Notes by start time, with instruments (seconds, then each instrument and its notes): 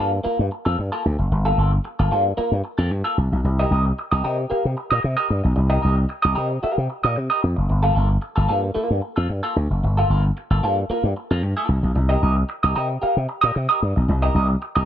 0.00 slap bass G2, clean electric guitar A#3 F4 A4
0.12 muted clean electric guitar stroke
0.24 clean electric guitar A#3 F4 A#4, muted slap bass stroke
0.39 slap bass G2, muted clean electric guitar stroke
0.51 muted clean electric guitar stroke
0.65 slap bass F2, clean electric guitar A#3 F4 A4
0.79 slap bass G2
0.92 clean electric guitar A#3 F4 A4
1.04 slap bass D2, muted clean electric guitar stroke
1.19 slap bass F#1, muted clean electric guitar stroke
1.31 slap bass G1, muted clean electric guitar stroke
1.45 clean electric guitar A#3 F4 A4
1.58 slap bass G1, clean electric guitar A#3 F4 A4
1.73 muted clean electric guitar stroke
1.85 muted clean electric guitar stroke
1.99 slap bass G1, clean electric guitar A#3 F4 A4
2.11 slap bass G2, clean electric guitar A#3 F4 A4
2.25 muted clean electric guitar stroke
2.37 clean electric guitar A#3 F4 A#4, muted slap bass stroke
2.52 slap bass G2, muted clean electric guitar stroke
2.64 muted clean electric guitar stroke
2.78 slap bass F2, clean electric guitar A#3 F4 A4
2.91 slap bass G2, muted clean electric guitar stroke
3.04 clean electric guitar A#3 F4 A4
3.18 slap bass C2, muted clean electric guitar stroke
3.32 slap bass B1, muted clean electric guitar stroke
3.44 slap bass C2, muted clean electric guitar stroke
3.59 clean electric guitar G4 A#4 D#5
3.71 slap bass C2, clean electric guitar G4 A#4 D#5
3.86 muted clean electric guitar stroke
3.99 muted clean electric guitar stroke
4.11 slap bass C2, clean electric guitar G4 A#4 D#5
4.24 slap bass C3, clean electric guitar G4 A#4 D#5
4.38 muted clean electric guitar stroke
4.50 clean electric guitar G4 A#4 F5, muted slap bass stroke
4.65 slap bass C3, muted clean electric guitar stroke
4.77 muted clean electric guitar stroke
4.91 slap bass A#2, clean electric guitar G4 A#4 D#5
5.03 slap bass C3, muted clean electric guitar stroke
5.17 clean electric guitar G4 A#4 D#5
5.29 slap bass G2, muted clean electric guitar stroke
5.44 slap bass B1, muted clean electric guitar stroke
5.56 slap bass C2, muted clean electric guitar stroke
5.70 clean electric guitar G4 A#4 D#5
5.82 slap bass C2, clean electric guitar G4 A#4 D#5
5.96 muted clean electric guitar stroke
6.09 muted clean electric guitar stroke
6.22 slap bass C2, clean electric guitar G4 A#4 D#5
6.35 slap bass C3, clean electric guitar G4 A#4 D#5
6.50 muted clean electric guitar stroke
6.63 clean electric guitar G4 A#4 F5, muted slap bass stroke
6.77 slap bass C3, muted clean electric guitar stroke
6.90 muted clean electric guitar stroke
7.04 slap bass A#2, clean electric guitar G4 A#4 D#5
7.16 slap bass C3, muted clean electric guitar stroke
7.30 clean electric guitar G4 A#4 D#5
7.42 slap bass F2, muted clean electric guitar stroke
7.56 slap bass F#1, muted clean electric guitar stroke
7.70 slap bass G1, muted clean electric guitar stroke
7.83 clean electric guitar A#3 F4 A4
7.95 slap bass G1, clean electric guitar A#3 F4 A4
8.10 muted clean electric guitar stroke
8.22 muted clean electric guitar stroke
8.36 slap bass G1, clean electric guitar A#3 F4 A4
8.48 slap bass G2, clean electric guitar A#3 F4 A4
8.63 muted clean electric guitar stroke
8.74 clean electric guitar A#3 F4 A#4, muted slap bass stroke
8.90 slap bass G2, muted clean electric guitar stroke
9.02 muted clean electric guitar stroke
9.16 slap bass F2, clean electric guitar A#3 F4 A4
9.29 slap bass G2, muted clean electric guitar stroke
9.43 clean electric guitar A#3 F4 A4
9.56 slap bass D2, muted clean electric guitar stroke
9.70 slap bass F#1, muted clean electric guitar stroke
9.84 slap bass G1, muted clean electric guitar stroke
9.97 clean electric guitar A#3 F4 A4
10.10 slap bass G1, clean electric guitar A#3 F4 A4
10.24 muted clean electric guitar stroke
10.37 muted clean electric guitar stroke
10.50 slap bass G1, clean electric guitar A#3 F4 A4
10.63 slap bass G2, clean electric guitar A#3 F4 A4
10.78 muted clean electric guitar stroke
10.90 clean electric guitar A#3 F4 A#4, muted slap bass stroke
11.04 slap bass G2, muted clean electric guitar stroke
11.17 muted clean electric guitar stroke
11.31 slap bass F2, clean electric guitar A#3 F4 A4
11.43 slap bass G2, muted clean electric guitar stroke
11.57 clean electric guitar A#3 F4 A4
11.69 slap bass C2, muted clean electric guitar stroke
11.83 slap bass B1, muted clean electric guitar stroke
11.95 slap bass C2, muted clean electric guitar stroke
12.09 clean electric guitar G4 A#4 D#5
12.22 slap bass C2, clean electric guitar G4 A#4 D#5
12.37 muted clean electric guitar stroke
12.49 muted clean electric guitar stroke
12.63 slap bass C2, clean electric guitar G4 A#4 D#5
12.75 slap bass C3, clean electric guitar G4 A#4 D#5
12.89 muted clean electric guitar stroke
13.02 clean electric guitar G4 A#4 F5, muted slap bass stroke
13.16 slap bass C3, muted clean electric guitar stroke
13.29 muted clean electric guitar stroke
13.41 slap bass A#2, clean electric guitar G4 A#4 D#5
13.55 slap bass C3, muted clean electric guitar stroke
13.69 clean electric guitar G4 A#4 D#5
13.81 slap bass G2, muted clean electric guitar stroke
13.96 slap bass B1, muted clean electric guitar stroke
14.09 slap bass C2, muted clean electric guitar stroke
14.22 clean electric guitar G4 A#4 D#5
14.35 slap bass C2, clean electric guitar G4 A#4 D#5
14.49 muted clean electric guitar stroke
14.62 muted clean electric guitar stroke
14.75 slap bass C2, clean electric guitar G4 A#4 D#5